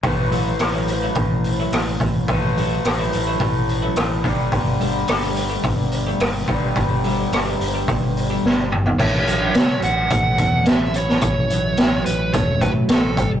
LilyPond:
<<
  \new Staff \with { instrumentName = "Lead electric guitar" } { \time 4/4 \key a \mixolydian \tempo 4 = 107 r1 | r1 | r1 | r1 |
cis''4. fis''4. e''8 cis''8 | cis''4. b'8 cis''8 b'8 a'8. r16 | }
  \new Staff \with { instrumentName = "Clean electric guitar" } { \time 4/4 \key a \mixolydian r8 <fis a cis' e'>16 r8 <fis a cis' e'>16 r16 <fis a cis' e'>16 r8. <fis a cis' e'>16 r4 | r8 <fis a cis' e'>16 r8 <fis a cis' e'>16 r16 <fis a cis' e'>16 r8. <fis a cis' e'>16 r4 | r8 <g a d' g'>16 r8 <g a d' g'>16 r16 <g a d' g'>16 r8. <g a d' g'>16 r4 | r8 <g a d' g'>16 r8 <g a d' g'>16 r16 <g a d' g'>16 r8. <g a d' g'>16 r4 |
a,8 fis8 fis8 cis'8 a8 fis8 cis'8 e'8 | a,8 fis8 fis8 cis'8 a8 fis8 cis'8 g8 | }
  \new Staff \with { instrumentName = "Overdriven electric guitar" } { \clef bass \time 4/4 \key a \mixolydian <a, e a>1 | <a, e a>2.~ <a, e a>8 <g, d g>8~ | <g, d g>2.~ <g, d g>8 <g, d g>8~ | <g, d g>2.~ <g, d g>8 r8 |
r1 | r1 | }
  \new Staff \with { instrumentName = "Fingered electric bass" } { \clef bass \time 4/4 \key a \mixolydian a,,8 a,,8 a,,4 a,,4 a,,8 a,,8 | a,,4 a,,8 a,,8 a,,4 a,,8 g,,8 | g,,8 g,,8 g,,4 g,,4 g,,8 g,,8 | g,,4 g,,8 g,,8 g,,4 g,,4 |
a,,8 a,,8 cis,8 a,,8 a,,8 e,8 a,,4 | a,,8 a,,8 a,,8 a,,8 e,,8 a,8 a,,8 g,,8 | }
  \new DrumStaff \with { instrumentName = "Drums" } \drummode { \time 4/4 <hho bd>8 hho8 <hho ss>8 hho8 <hho bd>8 hho8 <hho ss>8 <hho bd>8 | <hho bd>8 hho8 <hho ss>8 hho8 <hho bd>8 hho8 <hho ss>8 <hho bd>8 | <hho bd>8 hho8 <hho ss>8 hho8 <hho bd>8 hho8 <hho ss>8 <hho bd>8 | <hho bd>8 hho8 <hho ss>8 hho8 <hho bd>8 hho8 sn8 toml16 tomfh16 |
<cymc bd>8 hh8 <hh sn>8 hh8 <hh bd>8 <hh bd>8 <hh sn>8 hh16 sn16 | <hh bd>8 hh8 <hh sn>8 hh8 <hh bd>8 <hh bd>8 <hh sn>8 <hh bd>8 | }
>>